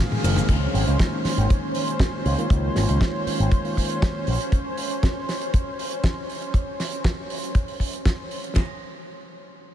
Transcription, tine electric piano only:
0, 0, Header, 1, 2, 480
1, 0, Start_track
1, 0, Key_signature, -5, "major"
1, 0, Tempo, 504202
1, 469, Time_signature, 4, 2, 24, 8
1, 9277, End_track
2, 0, Start_track
2, 0, Title_t, "Tine electric piano"
2, 0, Program_c, 0, 4
2, 0, Note_on_c, 0, 51, 78
2, 0, Note_on_c, 0, 56, 73
2, 0, Note_on_c, 0, 58, 70
2, 0, Note_on_c, 0, 60, 71
2, 0, Note_on_c, 0, 66, 87
2, 201, Note_off_c, 0, 51, 0
2, 204, Note_off_c, 0, 56, 0
2, 206, Note_off_c, 0, 58, 0
2, 208, Note_off_c, 0, 60, 0
2, 211, Note_off_c, 0, 66, 0
2, 227, Note_on_c, 0, 51, 84
2, 228, Note_on_c, 0, 56, 79
2, 230, Note_on_c, 0, 58, 79
2, 232, Note_on_c, 0, 60, 77
2, 234, Note_on_c, 0, 70, 91
2, 440, Note_off_c, 0, 51, 0
2, 441, Note_off_c, 0, 56, 0
2, 441, Note_off_c, 0, 58, 0
2, 443, Note_off_c, 0, 60, 0
2, 444, Note_off_c, 0, 70, 0
2, 466, Note_on_c, 0, 51, 68
2, 468, Note_on_c, 0, 56, 66
2, 470, Note_on_c, 0, 58, 66
2, 472, Note_on_c, 0, 61, 65
2, 477, Note_on_c, 0, 65, 78
2, 530, Note_off_c, 0, 51, 0
2, 531, Note_off_c, 0, 56, 0
2, 532, Note_off_c, 0, 58, 0
2, 533, Note_off_c, 0, 61, 0
2, 535, Note_off_c, 0, 65, 0
2, 940, Note_on_c, 0, 51, 76
2, 947, Note_on_c, 0, 56, 71
2, 952, Note_on_c, 0, 58, 70
2, 956, Note_on_c, 0, 61, 72
2, 960, Note_on_c, 0, 63, 83
2, 2239, Note_off_c, 0, 51, 0
2, 2242, Note_off_c, 0, 56, 0
2, 2244, Note_off_c, 0, 58, 0
2, 2246, Note_off_c, 0, 61, 0
2, 2249, Note_off_c, 0, 63, 0
2, 2267, Note_on_c, 0, 51, 95
2, 2269, Note_on_c, 0, 56, 81
2, 2272, Note_on_c, 0, 58, 85
2, 2274, Note_on_c, 0, 61, 85
2, 2276, Note_on_c, 0, 65, 100
2, 2328, Note_off_c, 0, 51, 0
2, 2330, Note_off_c, 0, 56, 0
2, 2331, Note_off_c, 0, 58, 0
2, 2332, Note_off_c, 0, 61, 0
2, 2333, Note_off_c, 0, 65, 0
2, 2388, Note_on_c, 0, 56, 81
2, 2389, Note_on_c, 0, 58, 84
2, 2391, Note_on_c, 0, 61, 82
2, 2395, Note_on_c, 0, 65, 96
2, 2840, Note_off_c, 0, 56, 0
2, 2841, Note_off_c, 0, 58, 0
2, 2842, Note_off_c, 0, 61, 0
2, 2844, Note_off_c, 0, 65, 0
2, 2876, Note_on_c, 0, 61, 65
2, 2881, Note_on_c, 0, 65, 78
2, 3447, Note_off_c, 0, 61, 0
2, 3449, Note_off_c, 0, 65, 0
2, 3463, Note_on_c, 0, 51, 69
2, 3468, Note_on_c, 0, 56, 62
2, 3473, Note_on_c, 0, 58, 64
2, 3477, Note_on_c, 0, 61, 65
2, 3482, Note_on_c, 0, 65, 76
2, 4050, Note_off_c, 0, 51, 0
2, 4053, Note_off_c, 0, 56, 0
2, 4056, Note_off_c, 0, 58, 0
2, 4057, Note_off_c, 0, 61, 0
2, 4060, Note_off_c, 0, 65, 0
2, 9277, End_track
0, 0, End_of_file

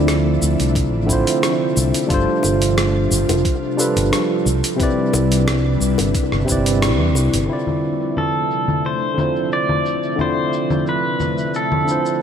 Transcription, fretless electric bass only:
0, 0, Header, 1, 2, 480
1, 0, Start_track
1, 0, Tempo, 674157
1, 1497, Time_signature, 4, 2, 24, 8
1, 8701, End_track
2, 0, Start_track
2, 0, Title_t, "Fretless electric bass"
2, 0, Program_c, 0, 35
2, 0, Note_on_c, 0, 38, 78
2, 267, Note_off_c, 0, 38, 0
2, 300, Note_on_c, 0, 38, 79
2, 403, Note_off_c, 0, 38, 0
2, 427, Note_on_c, 0, 36, 74
2, 667, Note_off_c, 0, 36, 0
2, 667, Note_on_c, 0, 33, 88
2, 759, Note_off_c, 0, 33, 0
2, 777, Note_on_c, 0, 33, 89
2, 881, Note_off_c, 0, 33, 0
2, 1260, Note_on_c, 0, 36, 91
2, 1363, Note_off_c, 0, 36, 0
2, 1496, Note_on_c, 0, 31, 85
2, 1601, Note_off_c, 0, 31, 0
2, 1738, Note_on_c, 0, 31, 79
2, 2186, Note_off_c, 0, 31, 0
2, 2216, Note_on_c, 0, 31, 82
2, 2320, Note_off_c, 0, 31, 0
2, 2342, Note_on_c, 0, 29, 70
2, 2437, Note_off_c, 0, 29, 0
2, 2822, Note_on_c, 0, 31, 96
2, 2917, Note_off_c, 0, 31, 0
2, 3177, Note_on_c, 0, 36, 95
2, 3281, Note_off_c, 0, 36, 0
2, 3657, Note_on_c, 0, 36, 77
2, 4105, Note_off_c, 0, 36, 0
2, 4135, Note_on_c, 0, 36, 75
2, 4240, Note_off_c, 0, 36, 0
2, 4262, Note_on_c, 0, 31, 76
2, 4356, Note_off_c, 0, 31, 0
2, 4501, Note_on_c, 0, 31, 94
2, 4596, Note_off_c, 0, 31, 0
2, 4615, Note_on_c, 0, 31, 85
2, 4982, Note_off_c, 0, 31, 0
2, 4982, Note_on_c, 0, 40, 97
2, 5096, Note_off_c, 0, 40, 0
2, 5096, Note_on_c, 0, 36, 90
2, 5201, Note_off_c, 0, 36, 0
2, 5222, Note_on_c, 0, 31, 78
2, 5317, Note_off_c, 0, 31, 0
2, 8701, End_track
0, 0, End_of_file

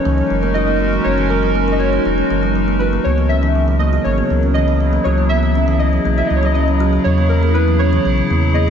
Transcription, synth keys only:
0, 0, Header, 1, 2, 480
1, 0, Start_track
1, 0, Tempo, 500000
1, 1012, Time_signature, 4, 2, 24, 8
1, 8352, End_track
2, 0, Start_track
2, 0, Title_t, "Synth keys"
2, 0, Program_c, 0, 88
2, 0, Note_on_c, 0, 73, 105
2, 517, Note_on_c, 0, 75, 101
2, 547, Note_off_c, 0, 73, 0
2, 997, Note_on_c, 0, 73, 102
2, 1019, Note_off_c, 0, 75, 0
2, 1227, Note_off_c, 0, 73, 0
2, 1237, Note_on_c, 0, 70, 93
2, 1650, Note_on_c, 0, 75, 69
2, 1670, Note_off_c, 0, 70, 0
2, 1718, Note_on_c, 0, 73, 90
2, 1724, Note_off_c, 0, 75, 0
2, 2407, Note_off_c, 0, 73, 0
2, 2678, Note_on_c, 0, 71, 85
2, 2918, Note_on_c, 0, 73, 94
2, 2932, Note_off_c, 0, 71, 0
2, 3158, Note_on_c, 0, 76, 101
2, 3172, Note_off_c, 0, 73, 0
2, 3638, Note_on_c, 0, 75, 95
2, 3659, Note_off_c, 0, 76, 0
2, 3878, Note_on_c, 0, 73, 93
2, 3892, Note_off_c, 0, 75, 0
2, 4358, Note_on_c, 0, 75, 97
2, 4380, Note_off_c, 0, 73, 0
2, 4838, Note_on_c, 0, 73, 98
2, 4860, Note_off_c, 0, 75, 0
2, 5079, Note_on_c, 0, 76, 101
2, 5092, Note_off_c, 0, 73, 0
2, 5558, Note_on_c, 0, 75, 100
2, 5580, Note_off_c, 0, 76, 0
2, 5927, Note_on_c, 0, 76, 85
2, 5947, Note_off_c, 0, 75, 0
2, 6015, Note_on_c, 0, 75, 86
2, 6022, Note_off_c, 0, 76, 0
2, 6102, Note_on_c, 0, 73, 87
2, 6110, Note_off_c, 0, 75, 0
2, 6190, Note_on_c, 0, 75, 85
2, 6197, Note_off_c, 0, 73, 0
2, 6267, Note_off_c, 0, 75, 0
2, 6278, Note_on_c, 0, 75, 94
2, 6758, Note_on_c, 0, 73, 101
2, 6780, Note_off_c, 0, 75, 0
2, 6988, Note_off_c, 0, 73, 0
2, 6998, Note_on_c, 0, 70, 88
2, 7239, Note_on_c, 0, 71, 95
2, 7253, Note_off_c, 0, 70, 0
2, 7478, Note_on_c, 0, 73, 102
2, 7493, Note_off_c, 0, 71, 0
2, 8198, Note_on_c, 0, 75, 99
2, 8227, Note_off_c, 0, 73, 0
2, 8352, Note_off_c, 0, 75, 0
2, 8352, End_track
0, 0, End_of_file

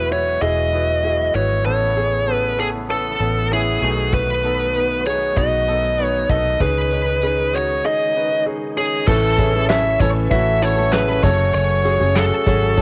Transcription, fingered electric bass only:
0, 0, Header, 1, 2, 480
1, 0, Start_track
1, 0, Tempo, 617920
1, 1289, Time_signature, 4, 2, 24, 8
1, 9957, End_track
2, 0, Start_track
2, 0, Title_t, "Fingered electric bass"
2, 0, Program_c, 0, 33
2, 0, Note_on_c, 0, 28, 79
2, 297, Note_off_c, 0, 28, 0
2, 324, Note_on_c, 0, 28, 81
2, 1016, Note_off_c, 0, 28, 0
2, 1046, Note_on_c, 0, 32, 84
2, 1271, Note_off_c, 0, 32, 0
2, 1287, Note_on_c, 0, 33, 74
2, 2457, Note_off_c, 0, 33, 0
2, 2487, Note_on_c, 0, 33, 79
2, 2937, Note_off_c, 0, 33, 0
2, 2967, Note_on_c, 0, 35, 85
2, 4138, Note_off_c, 0, 35, 0
2, 4172, Note_on_c, 0, 35, 85
2, 4860, Note_off_c, 0, 35, 0
2, 4890, Note_on_c, 0, 35, 77
2, 5114, Note_off_c, 0, 35, 0
2, 5129, Note_on_c, 0, 37, 86
2, 6059, Note_off_c, 0, 37, 0
2, 7049, Note_on_c, 0, 33, 95
2, 7738, Note_off_c, 0, 33, 0
2, 7769, Note_on_c, 0, 33, 89
2, 7992, Note_off_c, 0, 33, 0
2, 8010, Note_on_c, 0, 33, 112
2, 8698, Note_off_c, 0, 33, 0
2, 8727, Note_on_c, 0, 30, 97
2, 8951, Note_off_c, 0, 30, 0
2, 8969, Note_on_c, 0, 30, 85
2, 9303, Note_off_c, 0, 30, 0
2, 9328, Note_on_c, 0, 30, 102
2, 9551, Note_off_c, 0, 30, 0
2, 9686, Note_on_c, 0, 32, 81
2, 9957, Note_off_c, 0, 32, 0
2, 9957, End_track
0, 0, End_of_file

